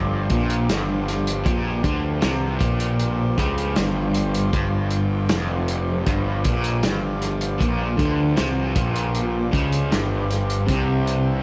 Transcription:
Already playing: picked electric bass G1, overdriven electric guitar G2, harmonium G2 F3, transistor combo organ F3 G4 C5 D5
0.30 picked electric bass A#1, overdriven electric guitar A#2, kick, closed hi-hat
0.50 closed hi-hat
0.69 picked electric bass G1, overdriven electric guitar G2, snare, closed hi-hat
1.08 snare, closed hi-hat
1.27 closed hi-hat
1.45 picked electric bass A#1, overdriven electric guitar A#2, kick, closed hi-hat
1.84 picked electric bass D2, overdriven electric guitar D3, kick, closed hi-hat
2.21 picked electric bass C2, overdriven electric guitar C3, snare, closed hi-hat
2.60 picked electric bass A#1, overdriven electric guitar A#2, kick, closed hi-hat
2.80 closed hi-hat
2.99 closed hi-hat
3.38 picked electric bass C#2, overdriven electric guitar C#3, kick, closed hi-hat
3.58 closed hi-hat
3.76 picked electric bass G1, overdriven electric guitar G2, snare, closed hi-hat
4.14 closed hi-hat
4.34 closed hi-hat
4.53 picked electric bass G1, overdriven electric guitar G2, kick, closed hi-hat
4.91 closed hi-hat
5.29 picked electric bass F1, overdriven electric guitar F2, snare, closed hi-hat
5.68 closed hi-hat
6.06 picked electric bass G1, overdriven electric guitar G2, kick, closed hi-hat
6.44 picked electric bass A#1, overdriven electric guitar A#2, kick, closed hi-hat
6.64 closed hi-hat
6.83 picked electric bass G1, overdriven electric guitar G2, snare, closed hi-hat
7.22 snare, closed hi-hat
7.41 closed hi-hat
7.59 picked electric bass A#1, overdriven electric guitar A#2, kick, closed hi-hat
7.98 picked electric bass D2, overdriven electric guitar D3, kick, closed hi-hat
8.37 picked electric bass C2, overdriven electric guitar C3, snare, closed hi-hat
8.76 picked electric bass A#1, overdriven electric guitar A#2, kick, closed hi-hat
8.96 closed hi-hat
9.15 closed hi-hat
9.52 picked electric bass C#2, overdriven electric guitar C#3, kick, closed hi-hat
9.72 closed hi-hat
9.91 picked electric bass G1, overdriven electric guitar G2, snare, closed hi-hat
10.31 snare, closed hi-hat
10.50 closed hi-hat
10.66 picked electric bass C2, overdriven electric guitar C3, transistor combo organ C3 G3 C5, kick, closed hi-hat
10.70 harmonium G2 D4, transistor combo organ G4
11.07 closed hi-hat

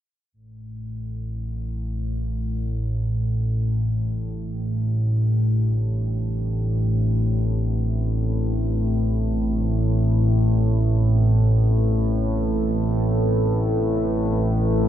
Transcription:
0.32 synth drone A1 A2, analog synth pad A2
0.94 analog synth pad C4
2.55 analog synth pad D4
3.69 analog synth pad G4
4.46 analog synth pad B4
9.52 analog synth pad E4
9.80 analog synth pad A4

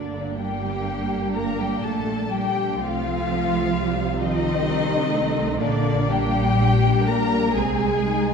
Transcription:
Already playing: double bass section G1, cello section D3, viola section A#3 D4, violin section D4 D5
0.38 cello section G3, violin section G4 G5
1.35 cello section A#3, violin section A#4 A#5
1.60 cello section G3, violin section G4 G5
1.83 double bass section A#1, cello section A3, violin section A4 A5
2.31 cello section G3, violin section G4 G5
2.77 double bass section C2, cello section F3, viola section A3 C4, violin section F4 F5
3.73 viola section G3 C4
4.18 cello section D#3, viola section F3, violin section D#4 D#5
4.65 viola section G3
5.11 viola section A3
5.59 double bass section A#1, cello section D3, viola section A#3 D4, violin section D4 D5
6.09 cello section G3, violin section G4 G5
6.58 viola section G3 D4
7.06 viola section G3, cello section A#3, violin section A#4 A#5
7.55 double bass section C2, cello section G#3, viola section G#3 C4, violin section G#4 G#5
8.05 viola section D#4

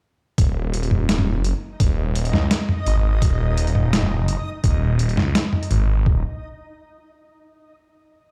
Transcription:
0.38 detuned saw bass D#1, synth texture D#4 D#5, kick, closed hi-hat
0.74 closed hi-hat
0.83 closed hi-hat
0.91 mid tom
1.09 snare, closed hi-hat
1.18 mid tom
1.36 detuned saw bass F#1
1.44 closed hi-hat
1.80 detuned saw bass D#1, kick, closed hi-hat
2.15 closed hi-hat
2.25 closed hi-hat
2.33 detuned saw bass C#2, snare, mid tom
2.51 snare, closed hi-hat
2.69 mid tom
2.86 detuned saw bass G#1, closed hi-hat
2.96 mid tom
3.22 detuned saw bass D#1, kick, closed hi-hat
3.57 closed hi-hat
3.67 closed hi-hat
3.75 mid tom
3.93 snare, closed hi-hat
4.02 mid tom
4.20 detuned saw bass F#1
4.28 closed hi-hat
4.64 detuned saw bass D#1, kick, closed hi-hat
4.99 closed hi-hat
5.09 closed hi-hat
5.17 detuned saw bass C#2, snare, mid tom
5.35 snare, closed hi-hat
5.53 mid tom
5.63 closed hi-hat
5.71 detuned saw bass G#1, closed hi-hat
5.80 mid tom
5.82 mid tom
5.84 mid tom
5.86 mid tom
6.06 detuned saw bass D#1, kick

